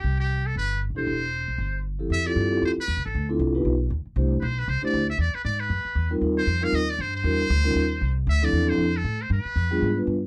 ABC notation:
X:1
M:4/4
L:1/16
Q:"Swing" 1/4=234
K:C
V:1 name="Muted trumpet"
G2 G4 A2 B4 z2 c2- | c12 z4 | e2 d6 c2 B4 A2- | A2 z12 z2 |
z3 z/2 B/2 c2 B2 c2 d4 e2 | d2 B2 d2 B8 z2 | z2 c4 f2 _e2 d2 c2 c2- | c12- c2 z2 |
e2 d4 c4 A4 c2 | B12 z4 |]
V:2 name="Vibraphone"
z12 z2 [DEGA]2 | z12 z2 [F,CEGA]2 | z2 [CEFGA]4 [CEFGA]2 z8 | z2 [CDEFA]4 [B,_EFGB]2 z8 |
[A,DEGc]2 z8 [A,DEGc]2 z4 | z12 z2 [G,C_EF_B]2 | [G,C_EF_B]2 z4 [G,CEFB]2 z8 | [G,DE^F_B]2 z4 [G,_D_E=FB]2 z8 |
z2 [F,CDEA]4 [F,CDEA]2 z8 | z6 [G,B,DF_A]2 z2 [G,B,DFB]2 z4 |]
V:3 name="Upright bass" clef=bass
C,,8 G,,,4- (3G,,,2 C,,2 B,,,2 | E,,,6 B,,,2 G,,,8 | F,,4 G,,4 F,,2 z2 (3E,,2 C,,2 A,,,2 | D,,4 C,,4 B,,,4 ^D,,2 z2 |
C,,4 B,,,4 C,,2 z2 D,,4 | E,,2 z2 ^G,,4 ^F,,2 z2 E,,4 | _E,,4 F,,4 E,,4 G,,4 | E,,4 D,,4 _E,,4 C,,4 |
D,,4 E,,4 F,,4 A,,4 | G,,2 z2 F,,4 _A,,4 G,,4 |]